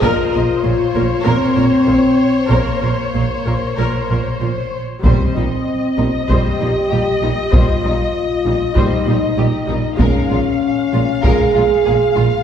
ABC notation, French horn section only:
X:1
M:4/4
L:1/8
Q:1/4=97
K:Cphr
V:1 name="French horn section"
F4 C4 | B,6 z2 | C4 G4 | F4 E2 E2 |
D4 A4 |]